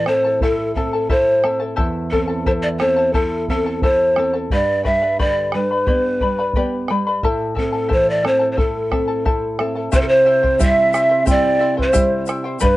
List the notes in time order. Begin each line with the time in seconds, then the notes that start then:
Already playing: A2
0.06 C4 E4 A4 C5 E5 A5, bombo rim
0.25 E4 A4 A5
0.41 E4 A4 C5 E5 A5, bombo low
0.75 C4 E4 A4 E5 A5, bombo low
0.93 E4 A4 A5
1.09 E4 A4 C5 E5 A5, bombo low
1.43 C4 E4 A4 E5 A5, bombo rim
1.60 E4 A4 A5
1.76 E2 E4 A4 C5 E5 A5, bombo low
2.11 C4 E4 A4 E5 A5, bombo low
2.27 E4 A4 A5
2.46 E3 E4 A4 C5 E5 A5, bombo low
2.62 D5
2.80 C4 E4 A4 C5 E5 A5, bombo rim
2.96 E4 A4 A5
3.13 E4 A4 C5 E5 A5, bombo low
3.48 C4 E4 A4 E5 A5, bombo low
3.66 E4 A4 A5
3.82 E4 A4 C5 E5 A5, bombo low
4.16 C4 E4 A4 E5 A5, bombo rim
4.34 E4 A4 A5
4.50 G2 G4 B4 D5 G5 B5, bombo low
4.83 G3 B4 D5 E5 G5 B5, bombo low
5.02 B4 D5 B5
5.19 D3 G4 B4 D5 G5 B5, bombo low
5.52 G3 B4 D5 G5 B5, bombo rim
5.71 B4 D5 B5
5.87 B3 G4 B4 D5 G5 B5, bombo low
6.21 G3 B4 D5 G5 B5, bombo low
6.39 B4 D5 B5
6.54 B3 G4 B4 D5 G5 B5, bombo low
6.88 G3 B4 D5 G5 B5, bombo rim
7.07 B4 D5 B5
7.23 A2 E4 A4 C5 E5 A5, bombo low
7.55 C4 E4 A4 E5 A5, bombo low
7.60 A4
7.73 E4 A4 A5
7.89 E3 E4 A4 C5 E5 A5, bombo low
7.93 C5
8.10 D5
8.23 C4 E4 A4 E5 A5, bombo rim
8.27 C5
8.39 E4 A4 A5
8.52 C5
8.57 E4 A4 C5 E5 A5, bombo low
8.91 C4 E4 A4 E5 A5, bombo rim, bombo low
9.08 E4 A4 A5
9.25 E4 A4 C5 E5 A5, bombo low
9.59 C4 E4 A4 E5 A5, bombo rim
9.75 E4 A4 A5
9.92 C3 E4 G4 C5 E5 G5, bombo low, shaker
10.00 A4
10.07 C5
10.25 E4 C5 E5 G5
10.43 E4 C5 G5, bombo low
10.59 G3 C4 E4 G4 C5 E5 G5, bombo low, shaker
10.63 E5
10.94 E4 C5 E5 G5, bombo rim, shaker
11.10 E4 C5 G5
11.26 G3 C4 E4 G4 C5 E5 G5, bombo low, shaker
11.31 D5
11.59 E4 C5 E5 G5
11.77 E4 C5 G5, bombo low
11.82 C5
11.93 G3 C4 E4 G4 C5 E5 G5, bombo low, shaker
12.26 E4 C5 E5 G5, bombo rim, shaker
12.44 E4 C5 G5
12.60 G2 G4 B4 D5 G5 B5, bombo low, shaker